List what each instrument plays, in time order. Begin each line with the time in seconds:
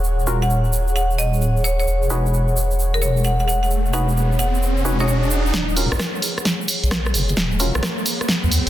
Already playing: wobble bass D#1, analog synth pad G#4 C#5 F#5
0.04 shaker
0.19 shaker
0.27 synth stab C#4 F4 F#4 A#4, shaker
0.42 marimba F#5, shaker
0.50 shaker
0.65 shaker
0.73 shaker
0.88 shaker
0.96 marimba F#5, shaker
1.11 shaker
1.19 marimba D#5, shaker
1.33 shaker
1.41 shaker
1.57 shaker
1.64 marimba C#5, shaker
1.80 marimba C#5, shaker
1.87 wobble bass E1, riser, shaker
2.03 shaker
2.10 synth stab D#4 F#4 G#4 B4, shaker
2.26 shaker
2.34 shaker
2.48 shaker
2.57 shaker
2.71 shaker
2.79 shaker
2.94 marimba A#4, shaker
3.02 marimba C#5, shaker
3.17 shaker
3.24 marimba F#5, shaker
3.39 marimba F#5, shaker
3.48 marimba F#5, shaker
3.63 marimba F#5, shaker
3.70 shaker
3.86 shaker
3.93 synth stab D#4 F#4 G#4 B4, marimba F#5, shaker
4.09 shaker
4.17 shaker
4.32 shaker
4.39 marimba F#5, shaker
4.55 shaker
4.63 shaker
4.77 shaker
4.85 synth stab D#4 F#4 G#4 B4, shaker
4.99 synth stab D#4 F#4 G#4 D#5, marimba C#5, shaker
5.08 marimba C#5, shaker
5.23 shaker
5.31 shaker
5.46 shaker
5.54 wobble bass D#1, kick, snare, closed hi-hat, riser, shaker
5.69 shaker
5.76 synth stab C#4 F4 F#4 A#4, open hi-hat, shaker
5.92 wobble bass A#1, kick, cross-stick, shaker
5.99 kick, cross-stick, snare, closed hi-hat, shaker
6.15 shaker
6.22 open hi-hat, shaker
6.38 cross-stick, closed hi-hat, shaker
6.45 kick, snare, closed hi-hat, shaker
6.61 shaker
6.68 open hi-hat, shaker
6.83 wobble bass A#1, closed hi-hat, shaker
6.91 kick, cross-stick, snare, closed hi-hat, shaker
7.06 cross-stick, shaker
7.14 wobble bass F#1, open hi-hat, shaker
7.29 closed hi-hat, shaker
7.37 wobble bass D#1, kick, snare, closed hi-hat, shaker
7.52 shaker
7.59 synth stab C#4 F4 F#4 A#4, open hi-hat, shaker
7.75 wobble bass A#1, kick, cross-stick, shaker
7.83 kick, cross-stick, snare, closed hi-hat, shaker
7.98 shaker
8.06 open hi-hat, shaker
8.21 cross-stick, closed hi-hat, shaker
8.29 kick, snare, closed hi-hat, shaker
8.44 wobble bass D#2, shaker
8.51 open hi-hat, shaker